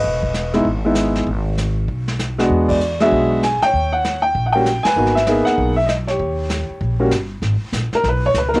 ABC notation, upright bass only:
X:1
M:4/4
L:1/8
Q:"Swing" 1/4=195
K:G#m
V:1 name="Upright bass" clef=bass
E,,,4 G,,,4 | G,,,4 B,,,4 | E,,4 B,,,3 z | D,,4 A,,,3 z |
G,,,3 z B,,,4 | D,,3 z A,,,2 =G,,,2 | G,,, z A,,, z B,,,2 C,,2 |]